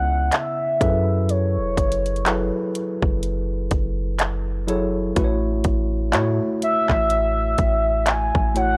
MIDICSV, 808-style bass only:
0, 0, Header, 1, 2, 480
1, 0, Start_track
1, 0, Tempo, 967742
1, 642, Time_signature, 4, 2, 24, 8
1, 4350, End_track
2, 0, Start_track
2, 0, Title_t, "808-style bass"
2, 0, Program_c, 0, 38
2, 0, Note_on_c, 0, 37, 103
2, 152, Note_off_c, 0, 37, 0
2, 401, Note_on_c, 0, 42, 96
2, 782, Note_on_c, 0, 28, 92
2, 789, Note_off_c, 0, 42, 0
2, 877, Note_off_c, 0, 28, 0
2, 880, Note_on_c, 0, 30, 101
2, 1245, Note_off_c, 0, 30, 0
2, 1499, Note_on_c, 0, 30, 92
2, 1827, Note_off_c, 0, 30, 0
2, 1842, Note_on_c, 0, 30, 103
2, 2542, Note_off_c, 0, 30, 0
2, 2563, Note_on_c, 0, 33, 108
2, 2793, Note_off_c, 0, 33, 0
2, 2801, Note_on_c, 0, 33, 105
2, 3044, Note_on_c, 0, 45, 95
2, 3051, Note_off_c, 0, 33, 0
2, 3175, Note_off_c, 0, 45, 0
2, 3419, Note_on_c, 0, 33, 98
2, 3747, Note_off_c, 0, 33, 0
2, 3762, Note_on_c, 0, 33, 96
2, 4126, Note_off_c, 0, 33, 0
2, 4142, Note_on_c, 0, 33, 100
2, 4350, Note_off_c, 0, 33, 0
2, 4350, End_track
0, 0, End_of_file